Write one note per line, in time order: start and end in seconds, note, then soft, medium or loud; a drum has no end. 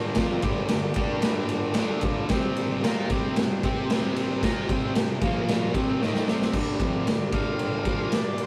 0.00 0.16 G2 medium
0.00 0.16 D3 loud
0.00 0.16 G3 loud
0.00 2.24 A#4 medium
0.00 2.26 D5 medium
0.00 1.77 G5 medium
0.15 0.42 F3 loud
0.15 0.43 C4 loud
0.15 0.43 F4 loud
0.15 kick loud
0.15 snare loud
0.15 ride loud
0.41 0.67 G2 medium
0.41 0.68 D3 loud
0.41 0.69 G3 loud
0.41 kick loud
0.41 ride medium
0.68 0.91 G2 medium
0.68 0.91 D3 medium
0.68 snare loud
0.68 ride loud
0.94 1.22 G3 loud
0.94 1.23 D4 loud
0.94 1.23 G4 loud
0.94 kick loud
0.94 ride medium
1.22 1.76 G2 medium
1.22 1.75 D3 loud
1.22 1.76 G3 loud
1.22 snare loud
1.22 ride loud
1.49 1.75 A5 medium
1.49 ride medium
1.74 2.02 D3 medium
1.74 2.03 A3 medium
1.74 2.03 D4 loud
1.74 snare loud
1.74 ride loud
1.78 2.03 G5 medium
2.01 2.29 G2 medium
2.01 2.29 D3 medium
2.01 2.28 G3 loud
2.01 kick loud
2.01 ride medium
2.05 2.29 F5 medium
2.29 2.82 C3 loud
2.29 2.82 G3 loud
2.29 2.83 C4 loud
2.29 5.18 G4 medium
2.29 5.19 C5 medium
2.29 5.19 G5 medium
2.29 kick loud
2.29 snare loud
2.29 ride loud
2.56 ride medium
2.83 3.09 A#3 medium
2.83 3.09 F4 loud
2.83 3.10 A#4 loud
2.83 snare loud
2.83 ride loud
3.10 3.36 C3 medium
3.10 3.36 G3 loud
3.10 3.37 C4 loud
3.10 kick loud
3.10 ride medium
3.36 3.59 C3 medium
3.36 3.59 G3 medium
3.36 snare loud
3.36 ride loud
3.63 3.89 C4 medium
3.63 3.90 G4 loud
3.63 3.90 C5 loud
3.63 kick loud
3.63 ride medium
3.90 4.42 C3 medium
3.90 4.43 G3 loud
3.90 4.43 C4 medium
3.90 snare loud
3.90 ride loud
4.16 ride medium
4.43 4.69 A#3 loud
4.43 4.69 F4 loud
4.43 4.70 A#4 loud
4.43 kick loud
4.43 snare loud
4.43 ride loud
4.69 4.95 C3 loud
4.69 4.95 G3 loud
4.69 4.96 C4 loud
4.69 kick loud
4.69 ride medium
4.95 5.17 C3 medium
4.95 5.18 G3 medium
4.95 snare loud
4.95 ride loud
5.20 5.75 A#2 medium
5.20 5.74 F4 medium
5.20 5.75 A#4 medium
5.20 5.76 F5 medium
5.20 kick loud
5.20 ride medium
5.24 5.76 F3 loud
5.24 5.75 A#3 loud
5.48 snare loud
5.48 ride loud
5.74 6.01 C3 medium
5.74 6.01 G3 loud
5.74 6.02 C4 loud
5.74 6.50 G4 medium
5.74 6.55 C5 medium
5.74 6.55 G5 medium
5.74 kick loud
5.74 ride medium
6.01 6.27 D#3 loud
6.01 6.27 A#3 medium
6.01 6.28 D#4 loud
6.01 snare medium
6.15 snare medium
6.28 6.54 C3 medium
6.28 6.54 G3 medium
6.28 6.55 C4 medium
6.28 snare loud
6.42 snare loud
6.51 6.79 G2 medium
6.51 8.46 G4 medium
6.51 8.46 A#4 medium
6.51 kick loud
6.51 crash loud
6.55 6.80 D3 loud
6.55 6.80 G3 loud
6.55 8.46 D5 medium
6.79 7.06 F2 medium
6.79 7.06 C3 medium
6.79 7.07 F3 loud
6.79 kick loud
6.79 ride medium
7.07 7.28 G2 medium
7.07 7.28 D3 medium
7.07 snare loud
7.07 ride loud
7.32 7.85 G2 medium
7.32 7.85 D3 medium
7.32 7.86 G3 medium
7.32 8.11 F5 loud
7.32 kick loud
7.32 ride medium
7.59 ride loud
7.85 8.12 A#2 loud
7.85 8.13 F3 medium
7.85 8.12 A#3 loud
7.85 kick loud
7.85 ride medium
8.12 8.40 D5 medium
8.12 snare loud
8.12 ride loud
8.38 ride medium
8.43 8.46 C5 medium